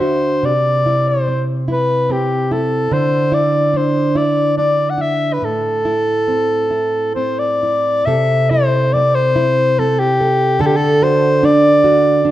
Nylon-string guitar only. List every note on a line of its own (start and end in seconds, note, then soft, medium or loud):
0.00 0.43 D3 medium
0.00 0.52 D4 soft
0.00 0.52 F#4 soft
0.43 2.91 C3 medium
0.86 1.68 E4 soft
1.28 2.08 C4 soft
1.68 2.51 E4 soft
2.10 3.00 C4 soft
2.51 3.31 E4 soft
2.91 5.41 D3 medium
3.32 4.15 E4 medium
3.74 4.56 D4 medium
4.15 4.97 E4 soft
4.58 5.50 D4 soft
4.98 5.85 E4 soft
5.42 8.06 A2 medium
5.85 6.70 E4 soft
6.28 7.16 C4 soft
6.71 7.62 E4 soft
7.16 8.95 C4 soft
7.63 8.50 E4 soft
8.07 10.62 C3 medium
8.07 10.20 A4 soft
8.51 9.34 E4 soft
8.95 9.78 C4 soft
9.36 10.70 E4 soft
9.79 10.70 C4 soft
10.20 10.60 A4 medium
10.59 12.31 D3 medium
10.59 12.31 A4 medium
11.02 11.83 F#4 medium
11.43 12.24 D4 medium
11.84 12.31 F#4 medium
12.25 12.31 D4 medium